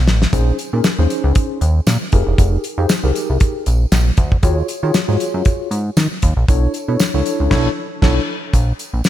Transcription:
0.07 A1, snare, tambourine
0.22 snare
0.33 A#1 C#4 D#4 G#4 C5, kick, closed hi-hat, tambourine
0.59 closed hi-hat, tambourine
0.73 A#2 C#4 D#4 G#4 A#4
0.84 snare, closed hi-hat, tambourine
0.99 D#2 C#4 D#4 G#4 C5
1.10 closed hi-hat, tambourine
1.24 C#2
1.35 kick, closed hi-hat
1.61 D#2, closed hi-hat, tambourine
1.87 A#2, snare, closed hi-hat, tambourine
2.12 F1 D#4 G4 G#4 A#4, kick, closed hi-hat
2.27 E1
2.38 F1, kick, closed hi-hat, tambourine
2.64 closed hi-hat, tambourine
2.78 F2 D#4 G4 G#4 C5
2.89 snare, closed hi-hat, tambourine
3.03 C2 D#4 G4 G#4 A#4
3.15 closed hi-hat, tambourine
3.30 C2
3.40 kick, closed hi-hat, tambourine
3.66 A#1, closed hi-hat, tambourine
3.92 A#1, snare, closed hi-hat, tambourine
4.17 D2, kick, closed hi-hat, tambourine
4.32 kick
4.43 D#2 F4 F#4 G#4 C#5, kick, closed hi-hat, tambourine
4.68 closed hi-hat, tambourine
4.83 D#3 F4 F#4 G#4 C#5
4.94 snare, closed hi-hat, tambourine
5.08 G#2 F4 F#4 G#4 C#5
5.20 closed hi-hat, tambourine
5.34 F#2
5.45 kick, closed hi-hat, tambourine
5.71 G#2, closed hi-hat, tambourine
5.97 D#3, snare, closed hi-hat, tambourine
6.22 D#2, kick, closed hi-hat, tambourine
6.37 A#1
6.48 B1 D4 E4 A4 C#5, kick, closed hi-hat, tambourine
6.74 closed hi-hat, tambourine
6.88 B2 D4 E4 A4 C#5
6.99 snare, closed hi-hat, tambourine
7.14 C#2 D4 E4 A4 C#5
7.26 closed hi-hat, tambourine
7.40 C#2
7.50 B1 D4 E4 A4 C#5, kick, snare, crash
8.02 B1 D4 E4 A4 C#5, kick, snare, crash
8.53 A#1, kick, closed hi-hat, tambourine
8.79 closed hi-hat, tambourine
8.93 A#1
9.04 snare, closed hi-hat, tambourine

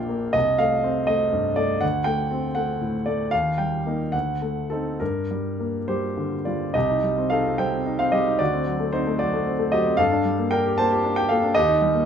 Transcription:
Already playing: A#1 A#2 A#3 D4 D5 F5 G5
0.09 A#3
0.33 C2 D#5
0.58 A3 F5
0.84 C4
1.07 A3 D#5
1.32 G2
1.56 A3 D5
1.81 D2 F#5
2.04 A3 G5
2.31 C4
2.55 A3 F#5
2.81 A2
3.06 A3 D5
3.31 D#2 F5
3.58 G3 G5
3.86 A#3 D#4
4.12 D2 F#5
4.42 A3
4.70 C4 D#4 A4
5.00 G2 A#4
5.31 G3
5.60 A#3
5.88 G3 G4 C5
6.17 D3
6.45 G3 F4 D5
6.74 C2 G4 D#5
6.89 D#4
7.04 G3
7.18 C4
7.30 D#4 A4 F5
7.45 C4
7.58 G3 C5 G5
7.73 C4
7.86 D#4
7.99 C4 F5
8.12 G3 G4 D#5
8.27 D#4
8.39 D2 F#4 D5
8.53 C4
8.66 F#3
8.80 A3
8.93 C4 D#4 C5
9.07 A3
9.19 F#3 F#4 D5
9.33 A3
9.46 C4
9.59 A3
9.72 F#3 G4 D#5
9.86 C4
9.97 G2 A4 F5
10.12 D4
10.25 G3
10.39 A#3
10.51 D4 A#4 G5
10.66 G4
10.78 A#3 C5 A5
10.92 G4
11.04 D4
11.16 G4 G5
11.29 A#3 A4 F5
11.43 D4
11.55 D#2 G4 D#5
11.69 D#4
11.82 G3
11.94 A#3

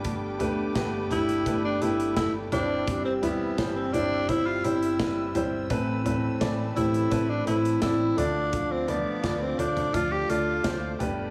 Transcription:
Already playing: G1 G2 A3 G4 A4 B4 G5 B5 D6
0.04 G2 D3 A3 B3 D4 G4, kick, closed hi-hat
0.39 G2 D3 A3 B3 D4 G4 B4, closed hi-hat, floor tom
0.75 G1 G2 D3 A3 B3 D4 G4 B4, kick, snare, closed hi-hat
1.10 G1 A3 B3 D4 E4 G4 B4, closed hi-hat, floor tom
1.29 closed hi-hat
1.45 G1 A3 B3 D4 G4 B4, kick, closed hi-hat
1.65 D4
1.81 G1 A3 B3 D4 E4 G4 B4, closed hi-hat
2.00 closed hi-hat
2.16 G1 A3 E4 G4 A4, kick, snare, closed hi-hat
2.51 G1 G2 G3 C4 D4 E4 G4 C5 E5 G5 E6, closed hi-hat, floor tom
2.87 G2 E3 G3 C4 E4 G4, kick, closed hi-hat
3.05 C4
3.22 G2 E3 G3 B3 C4 E4 G4 E5, closed hi-hat, floor tom
3.58 G1 G2 E3 G3 C4 E4 G4 C5, kick, snare, closed hi-hat
3.76 C4
3.93 G1 G3 C4 D4 E4 G4 C5, closed hi-hat, floor tom
4.28 G1 G3 C4 E4 G4 C5, kick, closed hi-hat
4.46 F4
4.64 G1 G3 C4 E4 G4 C5, closed hi-hat
4.83 closed hi-hat
4.99 G1 G3 E4 B4, kick, snare, closed hi-hat
5.34 G1 G3 C4 E4 G4 C5, closed hi-hat, floor tom
5.70 A1 A2 E3 A3 C4 E4 A4 B4 B5, kick, closed hi-hat
6.05 A2 E3 A3 C4 E4 B4, closed hi-hat, floor tom
6.40 A1 A2 E3 A3 C4 E4 B4 D5, kick, snare, closed hi-hat
6.76 A1 A3 C4 E4 G4 B4, closed hi-hat, floor tom
6.94 closed hi-hat
7.11 A1 A3 C4 E4 B4, kick, closed hi-hat
7.29 D4
7.46 A1 A3 C4 E4 B4, closed hi-hat
7.65 closed hi-hat
7.81 A1 A3 C4 E4 D5, kick, snare, closed hi-hat
8.17 D2 D3 A3 D4 F4 A4 D5 F5 D6, closed hi-hat, floor tom
8.52 D3 F3 D4 F4 A4, kick, closed hi-hat
8.72 C4
8.87 D3 F3 A3 B3 D4 F4 A4 D5, closed hi-hat, floor tom
9.23 D2 D3 F3 A3 D4 F4 A4 D5, kick, snare, closed hi-hat
9.42 C4
9.58 D2 A3 D4 F4 A4 C5, closed hi-hat, floor tom
9.77 closed hi-hat, floor tom
9.93 D2 F3 A3 D4 F4 A4 D5, kick, closed hi-hat
10.12 G4
10.29 D2 A3 D4 F4 A4 D5, closed hi-hat
10.64 D2 A3 F4 C5, kick, snare, closed hi-hat
10.99 G1 G2 A3 B3 D4 G4 B4 D5 G5 B5, closed hi-hat, floor tom

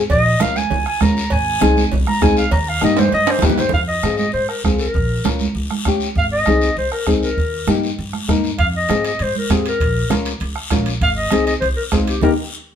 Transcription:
0.10 A#1 D#5, bombo low, cowbell, high conga, low conga, long guiro
0.40 C#2 C#4 F4 A#4 F5, bombo rim, high conga, short guiro
0.56 G#5, high conga, short guiro
0.70 C#2, cowbell, high conga, low conga, long guiro
0.86 G#5, bombo rim
1.01 C#2 C#4 F4 A#4 A#5, bombo low, bombo rim, high conga, low conga, short guiro
1.17 short guiro
1.30 G#1 G#5, bombo low, cowbell, high conga, long guiro
1.61 C2 C4 D#4 G#4, bombo rim, high conga, short guiro
1.77 high conga, short guiro
1.92 C2, cowbell, high conga, low conga, long guiro
2.07 A#5, bombo rim, high conga
2.21 C2 C4 D#4 G#4 G#5, bombo low, bombo rim, high conga, low conga, low timbale, short guiro
2.37 F5, short guiro
2.51 D#2 A#5, bombo low, cowbell, high conga, long guiro
2.69 F5
2.81 G2 A#3 D#4 G4 D#5, bombo rim, high conga, short guiro
2.97 C5, high conga, high timbale, short guiro
3.09 cowbell, high conga, long guiro
3.13 G2 D#5
3.27 C5, bombo rim, high timbale
3.39 G2 A#3, bombo low, bombo rim, low conga, low timbale, short guiro
3.43 D#4 G4 B4
3.50 low conga
3.58 C5, low conga, low timbale, short guiro
3.69 F2, bombo low, low conga, long guiro
3.74 F5, high conga
3.88 D#5
4.03 G#2 C4 F4 G#4, bombo rim, high conga, short guiro
4.17 D#5, high conga, short guiro
4.32 G#2 C5, long guiro
4.48 A#4, bombo rim
4.64 C2 C4 F4 G#4, bombo low, bombo rim, high conga, short guiro
4.79 A#4, short guiro
4.94 A#1, bombo low, high conga, long guiro
5.24 C#2 C#4 F4 A#4, bombo rim, high conga, short guiro
5.39 high conga, short guiro
5.55 C#2, high conga, long guiro
5.71 bombo rim, high conga
5.85 C#2 C#4 F4 G4, bombo low, bombo rim, high conga, short guiro
6.00 short guiro
6.15 G#1 F5, bombo low, high conga, long guiro
6.32 D#5
6.45 C2 C4 D#4 G#4, bombo rim, high conga, short guiro
6.61 short guiro
6.77 C2 C5, high conga, long guiro
6.92 A#4, bombo rim
7.07 C2 C4 D#4 G#4, bombo low, bombo rim, high conga, short guiro
7.23 A#4, short guiro
7.37 D#2, bombo low, high conga, long guiro
7.67 G2 A#3 D#4 G4, bombo rim, high conga, short guiro
7.83 short guiro
7.98 G2, high conga, long guiro
8.13 bombo rim, high conga
8.28 G2 A#3 D#4 A#4, bombo low, bombo rim, high conga, short guiro
8.44 short guiro
8.59 F2 F5, bombo low, high conga, high timbale, long guiro
8.77 D#5
8.89 G#2 C4 F4 G#4, bombo rim, high conga, high timbale, short guiro
9.05 D#5, high timbale, short guiro
9.19 G#2 C5, high conga, high timbale, long guiro
9.36 A#4, high conga
9.50 G#2 C4 F4 G4 G#4, bombo low, bombo rim, high conga, high timbale, low timbale, short guiro
9.65 A#4, high timbale, short guiro
9.80 A#1, bombo low, high timbale, long guiro
10.10 C#2 C#4 F4 A#4, bombo rim, high conga, high timbale, short guiro
10.25 high timbale, short guiro
10.40 C#2, high conga, high timbale, long guiro
10.56 bombo rim
10.70 A#1 C#4 F4 A#4, bombo low, bombo rim, high conga, high timbale, low timbale, short guiro
10.86 high timbale, short guiro
11.01 G#1 F5, bombo low, high conga, high timbale, long guiro
11.17 D#5
11.31 C2 C4 D#4 G#4, bombo rim, high conga, high timbale, short guiro
11.46 D#5, high timbale, short guiro
11.60 C2 C5, high conga, high timbale, long guiro
11.76 A#4
11.92 C2 C4 D#4 F4 G#4, bombo low, bombo rim, high conga, high timbale, low timbale, short guiro
12.07 G4, high timbale, short guiro
12.21 D#2 A#3 D#4 G4 A#4, bombo low, low conga, high timbale, long guiro

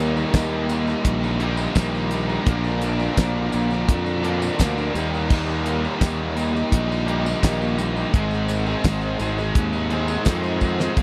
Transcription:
Already playing: D#2 D#3 G3 A#3 D#4 G4 A#4 D#5
0.00 A#3 D#4 G4
0.16 G3 A#3 D#4 G4 A#4, tambourine
0.33 D#2 D#3 G3 A#3 D#4 G4, kick, snare, closed hi-hat, tambourine
0.37 A#4
0.68 G3 A#3 D#4 G4 A#4, closed hi-hat, tambourine
0.86 A#3 D#4 G4, muted overdriven electric guitar stroke, snare, tambourine
1.04 A#1, kick, closed hi-hat, tambourine
1.22 A#3 D#4 G4, tambourine
1.40 D#3 G3 A#3 D#4 G4 A#4, closed hi-hat
1.57 muted overdriven electric guitar stroke, tambourine
1.75 A#1 D#3 G3 A#3 D#4 G4 A#4, kick, snare, closed hi-hat, tambourine
1.93 A#3 D#4 G4 A#4, tambourine
1.97 G3
2.11 G3 A#3 D#4 G4 A#4, closed hi-hat, tambourine
2.28 G3 A#3 D#4 G4 A#4, tambourine
2.46 A#1 A#2 D3 F3 A#3 D4 F4 A#4 D5, kick, closed hi-hat
2.64 snare, tambourine
2.81 F3 A#3 D4 A#4, closed hi-hat, tambourine
2.98 F3 A#3 D4 F4 A#4, tambourine
3.16 A#1 A#2 D3 F3 A#3 D4 A#4, kick, snare, closed hi-hat, tambourine
3.21 F4
3.51 A#1 F3 A#3 D4 A#4, closed hi-hat, tambourine
3.56 F4
3.70 F3 A#3 D4 A#4, muted overdriven electric guitar stroke, snare, tambourine
3.89 F2, kick, closed hi-hat, tambourine
4.05 F3 A#3 D4 A#4, tambourine
4.22 A#2 D3 F3 A#3 D4 F4 A#4, closed hi-hat
4.42 muted overdriven electric guitar stroke, tambourine
4.57 D2 A#2 D3 F3 A#3 D4 A#4, kick, snare, closed hi-hat, tambourine
4.61 F4
4.75 F3 A#3 D4 F4 A#4, tambourine
4.93 D#2 D#3 G3 A#3 D#4 G4 D#5, closed hi-hat, tambourine
4.97 A#4
5.11 G3 A#3 D#4 G4 A#4, tambourine
5.28 D#3 G3 A#3 D#4 A#4, kick, crash
5.33 G4
5.49 tambourine
5.64 G3 A#3 D#4 G4, closed hi-hat, tambourine
5.82 G3 A#3 D#4 G4 A#4, tambourine
5.99 D#2 D#3 G3 A#3 D#4 G4 A#4, kick, snare, closed hi-hat, tambourine
6.35 G3 A#3 D#4 G4 A#4, closed hi-hat, tambourine
6.53 A#3 D#4 G4, muted overdriven electric guitar stroke, snare, tambourine
6.72 A#1 D#3 G3 A#3 D#4, kick, closed hi-hat, tambourine
6.88 A#3 D#4 G4, tambourine
7.06 G3 A#3 D#4 G4 A#4, closed hi-hat
7.10 D#3 G3
7.25 muted overdriven electric guitar stroke, tambourine
7.42 A#1 D#3 G3 A#3 D#4 G4 A#4, kick, snare, closed hi-hat, tambourine
7.59 G3 A#3 D#4 G4 A#4, tambourine
7.77 G3 A#3 D#4 G4, closed hi-hat, tambourine
7.81 A#4
7.94 A#3 D#4 G4 A#4, tambourine
7.98 G3 G4
8.12 G#1 G#2 D#3 G#3 C4 D#4 G#4 D#5, kick, closed hi-hat, tambourine
8.17 C5
8.31 snare, tambourine
8.48 G#3 C4 D#4 G#4, closed hi-hat, tambourine
8.66 C4 D#4 G#4 C5, tambourine
8.84 G#1 G#3 C4 D#4 G#4 C5, kick, snare, closed hi-hat, tambourine
9.01 tambourine
9.19 G#1 G#3 C4 D#4 G#4, closed hi-hat, tambourine
9.23 C5
9.36 C4 D#4 G#4, muted overdriven electric guitar stroke, snare, tambourine
9.55 D#2, kick, closed hi-hat, tambourine
9.72 C4 D#4 G#4, tambourine
9.90 G#2 D#3 G#3 C4 D#4 G#4, closed hi-hat, tambourine
9.94 C5
10.08 muted overdriven electric guitar stroke, tambourine
10.25 F2 G#2 D#3 G#3 C4 D#4 G#4 C5, kick, snare, closed hi-hat, tambourine
10.42 C4 D#4 G#4 C5, tambourine
10.61 G#3 C4 D#4 G#4 C5, kick, tambourine
10.78 D#4 G#4 C5, snare, tambourine
10.83 C4
10.96 A#1 A#2 D3 F3 A#3 D4 E4 F4, kick, closed hi-hat

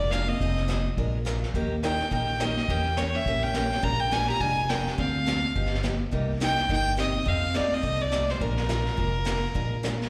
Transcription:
Already playing: F1 D5
0.11 F3 G#3 A#3 D4 F4 A#4 F5, snare, hi-hat pedal
0.28 C4 D#5
0.40 F1 F3 C4 D#4 G#4, brush sweep, kick
0.58 snare
0.68 F3 C4 D#4 G#4, snare, hi-hat pedal
0.97 A#1 F3 G#3 D4 F4 A#4, brush sweep, kick
1.25 F3 G#3 D4 F4 A#4, snare, hi-hat pedal
1.43 snare
1.54 D#2 D#3 A#3 C#4 G4 A#4, brush sweep, kick
1.83 D#3 A#3 C#4 D#4 G4 A#4 G5, snare, hi-hat pedal
2.00 snare
2.11 A#1 D#3 A#3 C#4 D#4 G4 A#4 G5, brush sweep, kick
2.40 D#3 A#3 C#4 G4 A#4 D#5, snare, hi-hat pedal
2.57 snare
2.68 E2 E3 A#3 C#4 G4 G5, brush sweep, kick
2.97 E3 A#3 C#4 G4 C#5, snare, hi-hat pedal
3.15 C#4 E5
3.26 A#1 E3 A#3 C#4 G4, brush sweep, kick
3.43 C#4 G5
3.54 E3 A#3 C#4 G4, snare, hi-hat pedal
3.72 snare
3.82 A#1 F3 G#3 D4 F4 A#4 A#5, brush sweep, kick
4.00 D4 G5
4.11 F3 G#3 D4 F4 A#4 G#5, snare, hi-hat pedal
4.29 G4 A#5, snare
4.40 F1 F3 G#3 D4 F4 A#4 G#5, brush sweep, kick
4.69 F3 G#3 D4 F4 A#4 G5, snare, hi-hat pedal
4.87 snare
4.98 D2 D3 F3 C4 D4 G#4 F5, brush sweep, kick
5.26 D3 F3 C4 D4 G#4, snare, hi-hat pedal
5.55 G1 F3 B3 D#4 G4, brush sweep, kick
5.66 snare
5.75 snare
5.83 F3 B3 D#4 G4, snare, hi-hat pedal
6.11 C2 C3 G3 A#3 D#4 G4, brush sweep, kick
6.40 C3 G3 A#3 D#4 G4 G5, snare, hi-hat pedal
6.58 snare
6.69 G1 C3 G3 A#3 D#4 G4 G5, brush sweep, kick
6.97 C3 G3 A#3 C4 D#4 G4 D#5, snare, hi-hat pedal
7.25 F2 F3 C4 D#4 A4 F5, brush sweep, kick
7.54 F3 A3 C4 D#4 A4 D5, snare, hi-hat pedal
7.74 C4 D#5
7.83 C2 F3 C4 D#4 A4, brush sweep, kick
8.01 A3 D5
8.12 F3 C4 D#4 A4, snare, hi-hat pedal
8.29 G3 C5, snare
8.40 A#1 F3 G#3 D4 F4 A#4, brush sweep, kick
8.58 snare
8.69 F3 G#3 D4 F4 A#4, snare, hi-hat pedal
8.86 snare
8.97 F1 F3 G#3 D4 F4 A#4, brush sweep, kick
9.25 F3 G#3 D4 F4 A#4, snare, hi-hat pedal
9.54 A#1 F3 G#3 D4 F4 A#4, brush sweep, kick
9.83 F3 G#3 D4 F4 A#4, snare, hi-hat pedal
10.01 snare

